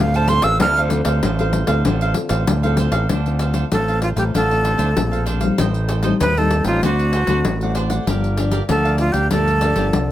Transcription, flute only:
0.00 0.17 F5 medium
0.16 0.30 A5 medium
0.29 0.45 C6 medium
0.43 0.60 E6 medium
0.61 0.80 F6 medium
3.72 4.01 A4 medium
4.03 4.09 F4 medium
4.17 4.23 G4 medium
4.35 5.24 A4 medium
6.21 6.40 B4 medium
6.38 6.66 A4 medium
6.67 6.82 F4 medium
6.84 7.73 F#4 medium
8.70 8.99 A4 medium
9.00 9.14 F4 medium
9.12 9.30 G4 medium
9.31 10.12 A4 medium

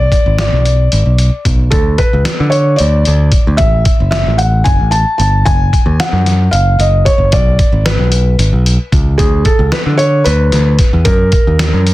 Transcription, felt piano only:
0.00 0.38 D5 loud
0.40 1.42 D5 medium
1.71 1.99 A4 medium
1.98 2.54 B4 medium
2.50 2.79 C#5 medium
2.76 3.54 D5 medium
3.57 4.09 E5 medium
4.11 4.40 E5 medium
4.38 4.67 F#5 medium
4.64 4.90 G#5 medium
4.91 5.17 A5 medium
5.18 5.47 A5 medium
5.45 6.01 G#5 medium
6.00 6.55 F#5 medium
6.51 6.80 F5 medium
6.80 7.07 D#5 medium
7.05 7.31 C#5 medium
7.32 7.88 D5 medium
7.85 8.89 B4 medium
9.18 9.44 G#4 medium
9.45 9.74 A4 medium
9.72 9.79 B4 medium
9.97 10.24 C#5 medium
10.24 11.08 B4 medium
11.05 11.94 A#4 medium

